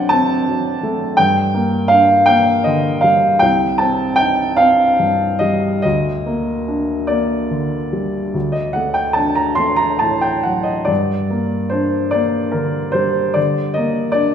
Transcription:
Already playing: F#2 F#3 A3 C4 D4 D5 D#5 F#5 G5
0.09 C4 A5
0.48 F#3
0.83 A3
1.17 G2 G5
1.54 A#3
1.88 D4 F5
2.26 A#3 G5
2.64 D3 D#5
3.01 G3 F5
3.39 C2 G5
3.78 C4 A5
4.16 D#4 G5
4.57 C4 F5
4.99 G2
5.39 G3 D#5
5.82 D2 D#5
6.26 A#3
6.68 D4
7.07 A#3 D5
7.51 D3
7.93 G3
8.34 D2
8.52 D#5
8.73 A3 F#5
8.94 G5
9.13 D4 A5
9.35 A#5
9.55 A3 C6
9.76 A#5
9.99 A2 A5
10.21 G5
10.43 F#3 F#5
10.63 D#5
10.85 G2 D5
11.30 A#3
11.70 D4 C5
12.11 A#3 D5
12.51 D3 A#4
12.92 G3 C5
13.34 D3 D5
13.74 A#3 D#5
14.12 D4 D5

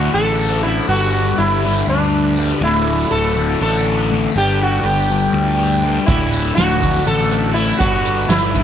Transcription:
Already playing: D2 A2 D3 F#4 D5 E5 F#5
0.14 A1 A4
0.63 D2 A2 D3 E4
0.88 G1 G2 D3 G3 F#4 B4 B5
1.38 G1 E4
1.64 G2 D3 G3
1.87 D2 D4
2.37 G2 D3 G3
2.61 D1 D2 A2 D3 E4 E5 F#5
3.11 D1 A4
3.36 D2 A2 D3
3.61 A1 A4
4.11 D2 A2 D3
4.35 G1 G2 D3 G3 G4 B4 D5 G5
4.62 F#4
4.83 G1 G4
5.09 G2 D3 G3
5.33 D2
5.83 G2 D3 G3
6.06 D1 D2 A2 D3 E4 E5 F#5, kick, closed hi-hat
6.33 closed hi-hat
6.55 D1 F#4, snare, closed hi-hat
6.81 D2 A2 D3, kick, closed hi-hat
7.06 A1 A4, closed hi-hat
7.31 closed hi-hat
7.54 D2 A2 D3 E4, closed hi-hat
7.78 G1 G2 D3 G3 F#4 B4 D5 B5, kick, closed hi-hat
8.05 closed hi-hat
8.29 G1 E4, snare, closed hi-hat
8.54 G2 D3 G3, kick, closed hi-hat

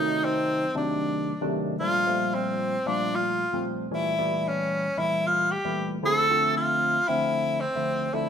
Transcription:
Already playing: C3 D#3 F#3 A3 D#4
0.24 C4
0.74 C3 D#3 F#3 A3 D4
1.41 C3 D#3 F#3 A3 D4
1.80 A#2 F3 G3 A3 D4 F4
2.06 A#2 F3 G3 A3 F4
2.34 C4
2.86 A#2 F3 G3 A3 D4 F4
3.15 F4
3.53 A#2 F3 G3 A3 C4
3.91 A#2 E3 G3 A3 C#4 E4
4.18 A#2 E3 G3 A3 E4
4.48 C#4
4.97 A#2 E3 G3 A3 E4
5.27 F4
5.51 G4
5.64 A#2 E3 G3 A3 E4
6.02 D3 F3 A3 C4 E4 A4
6.30 D3 F3 A3 C4 E5
6.57 F4
7.08 D3 F3 A3 C4 E4
7.61 C4
7.75 D3 F3 A3 C4 E4
8.13 D3 F3 A3 C4 D4 E4

